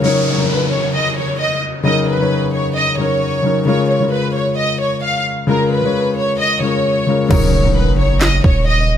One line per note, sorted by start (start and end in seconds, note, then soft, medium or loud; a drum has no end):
0.01 0.31 C#3 medium
0.01 0.32 F#3 medium
0.01 0.33 D#4 medium
0.01 0.33 A#4 loud
0.01 0.21 C#5 medium
0.01 downlifter medium
0.26 0.44 C#5 medium
0.36 1.13 C#3 medium
0.36 1.14 F#3 medium
0.36 1.14 D#4 medium
0.36 1.15 A#4 medium
0.49 0.67 B4 medium
0.72 0.89 C#5 medium
0.94 1.12 D#5 medium
1.17 1.35 C#5 medium
1.40 1.58 D#5 medium
1.83 2.13 C#3 loud
1.83 2.14 F#3 medium
1.83 2.15 D#4 medium
1.83 2.15 A#4 loud
1.83 2.03 D#5 medium
2.08 2.51 B4 medium
2.18 2.86 C#3 medium
2.18 2.87 F#3 medium
2.18 2.87 D#4 medium
2.18 2.88 C#5 medium
2.53 2.71 C#5 medium
2.76 2.94 D#5 medium
2.97 3.37 C#3 medium
2.97 3.37 F#3 medium
2.97 3.38 D#4 medium
2.97 3.39 A#4 medium
2.97 3.63 C#5 medium
3.42 3.63 C#3 medium
3.42 3.63 F#3 medium
3.42 3.64 D#4 medium
3.42 3.65 A#4 medium
3.65 3.95 C#3 medium
3.65 3.96 G#3 medium
3.65 3.97 F4 medium
3.65 3.97 A#4 loud
3.65 3.85 C#5 medium
3.90 4.08 C#5 medium
4.00 4.77 C#3 medium
4.00 4.78 G#3 medium
4.00 4.78 F4 medium
4.00 4.79 A#4 medium
4.13 4.30 B4 medium
4.35 4.53 C#5 medium
4.58 4.76 D#5 medium
4.81 4.98 C#5 medium
5.03 5.21 F5 medium
5.47 5.77 C#3 medium
5.47 5.78 G#3 medium
5.47 5.78 F4 medium
5.47 5.67 A#4 medium
5.47 5.79 A#4 loud
5.72 6.14 B4 medium
5.82 6.50 C#3 medium
5.82 6.50 G#3 medium
5.82 6.51 F4 medium
5.82 6.52 C#5 medium
6.17 6.35 C#5 medium
6.40 6.57 D#5 loud
6.60 7.00 C#3 medium
6.60 7.01 G#3 medium
6.60 7.01 F4 medium
6.60 7.02 A#4 medium
6.60 7.27 C#5 medium
7.06 7.27 C#3 medium
7.06 7.27 G#3 medium
7.06 7.28 F4 medium
7.06 7.28 A#4 medium
7.29 7.90 D#1 loud
7.29 7.59 C#3 medium
7.29 7.59 F#3 medium
7.29 7.60 D#4 medium
7.29 7.61 A#4 loud
7.29 7.48 C#5 medium
7.29 kick loud
7.29 crash loud
7.29 impact medium
7.53 7.71 C#5 medium
7.63 8.40 C#3 medium
7.63 8.41 F#3 medium
7.63 8.42 D#4 medium
7.63 8.42 A#4 medium
7.76 7.94 B4 medium
7.88 8.41 F#1 loud
7.99 8.17 C#5 medium
8.21 8.39 D#5 medium
8.21 snare loud
8.21 clap medium
8.44 8.97 D#1 loud
8.44 8.62 C#5 medium
8.44 kick loud
8.67 8.85 D#5 medium